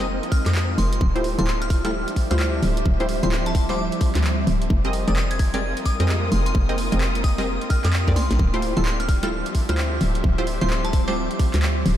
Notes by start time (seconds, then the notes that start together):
Already playing: F1 F3 G#3 A#3 C4 D#4 A#4 D#5 G5
0.00 snare, open hi-hat
0.23 closed hi-hat
0.32 F6, kick, open hi-hat
0.46 F2 D#6, clap, snare, closed hi-hat
0.55 clap
0.78 F1 C6, open hi-hat
0.93 closed hi-hat
1.01 D1 F3 G3 C4 D4 E5, kick
1.16 A3 E4 F4 G4 C5, closed hi-hat
1.24 open hi-hat
1.30 G4
1.38 D1 A3 E4 F4 G4 A4 C6, closed hi-hat
1.47 C6, clap
1.53 C5
1.62 F6, closed hi-hat
1.66 E5
1.70 F6, kick, open hi-hat
1.85 A3 E4 F4 G4 A4 F6, snare, closed hi-hat
2.08 closed hi-hat
2.16 kick, open hi-hat
2.31 D2 A3 E4 F4 G4 C5 F6, snare, closed hi-hat
2.39 F6, clap
2.63 D1, open hi-hat
2.77 closed hi-hat
2.86 D1, kick
3.00 A3 E4 F4 G4 C5, closed hi-hat
3.09 open hi-hat
3.23 D1 A3 E4 F4 G4 C5 C6, closed hi-hat
3.32 clap
3.46 A5, closed hi-hat
3.55 kick, open hi-hat
3.69 A3 E4 F4 G4 C5 D6, snare, open hi-hat
3.78 D6
3.92 closed hi-hat
4.01 kick, open hi-hat
4.15 D2, clap, snare, closed hi-hat
4.24 clap
4.47 D1, open hi-hat
4.62 closed hi-hat
4.70 F1 G#3 A#3 C4 D#4 G5, kick
4.80 F4
4.85 C4 G4 G#4 A#4 D#5, closed hi-hat
4.93 open hi-hat
5.01 A#4
5.08 F1 C4 G4 G#4 A#4 D5 D#6, closed hi-hat
5.16 D#6, clap
5.31 G#6, closed hi-hat
5.39 G#6, kick, open hi-hat
5.53 C4 G4 G#4 A#4 D5 D#6 G#6, snare, closed hi-hat
5.77 closed hi-hat
5.86 D#6, kick, open hi-hat
6.00 F2 C4 G4 G#4 A#4 D#5, snare, closed hi-hat
6.09 clap
6.32 F1 C6, open hi-hat
6.46 C6, closed hi-hat
6.55 F1 D4, kick
6.69 C4 G4 G#4 A#4 D#5, closed hi-hat
6.78 open hi-hat
6.92 F1 C4 G4 G#4 A#4 D#5, closed hi-hat
7.01 clap
7.15 closed hi-hat
7.24 D#6, kick, open hi-hat
7.38 C4 G4 G#4 A#4 D#5, snare, open hi-hat
7.61 closed hi-hat
7.70 F6, kick, open hi-hat
7.85 F2 D#6, clap, snare, closed hi-hat
7.93 clap
8.08 F2 C4 G4 G#4 A#4 D5, kick, snare, closed hi-hat
8.16 C2 C6, snare, open hi-hat
8.31 A#1, snare, closed hi-hat
8.39 D1 F3 G3 C4 D4 E5, kick
8.54 A3 E4 F4 G4 C5, closed hi-hat
8.59 G4, open hi-hat
8.77 D1 A3 E4 F4 G4 A4 C6, closed hi-hat
8.85 C6, clap
8.91 C5
9.00 F6, closed hi-hat
9.09 F6, kick, open hi-hat
9.23 A3 E4 F4 G4 A4 F6, snare, closed hi-hat
9.36 E5
9.46 closed hi-hat
9.55 kick, open hi-hat
9.69 D2 A3 E4 F4 G4 C5 F6, snare, closed hi-hat
9.78 F6, clap
10.01 D1, open hi-hat
10.15 closed hi-hat
10.24 D1, kick
10.38 A3 E4 F4 G4 C5, closed hi-hat
10.47 open hi-hat
10.61 D1 A3 E4 F4 G4 C5 C6, closed hi-hat
10.70 clap
10.85 A5, closed hi-hat
10.93 kick, open hi-hat
11.08 A3 E4 F4 G4 C5 D6, snare, open hi-hat
11.16 D6
11.31 closed hi-hat
11.39 kick, open hi-hat
11.54 D2, clap, snare, closed hi-hat
11.62 clap
11.86 D1, open hi-hat